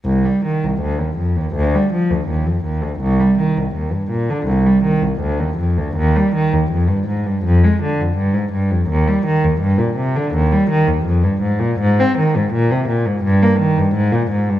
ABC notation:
X:1
M:4/4
L:1/16
Q:1/4=82
K:Cm
V:1 name="Cello" clef=bass
C,, G, E, C,, D,, E,, F,, E,, D,, G, F, D,, E,, F,, E,, D,, | C,, G, E, C,, E,, G,, B,, D, C,, G, E, C,, D,, E,, F,, D,, | E,, G, E, E,, F,, G,, A,, G,, F,, A, D, F,, G,, A,, G,, F,, | E,, G, E, E,, G,, B,, C, D, E,, G, E, E,, F,, G,, A,, B,, |
A,, C E, A,, B,, C, B,, A,, G,, B, E, G,, A,, B,, A,, G,, |]